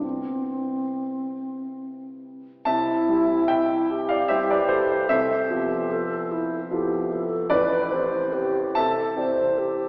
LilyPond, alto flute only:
\new Staff \with { instrumentName = "Alto flute" } { \time 6/8 \key c \major \tempo 4. = 49 c'2~ c'8 r8 | e'4. g'4. | a'8 g'8 a'8 e'8 g'8 a'8 | b'8 c''8 g'8 a'8 c''8 g'8 | }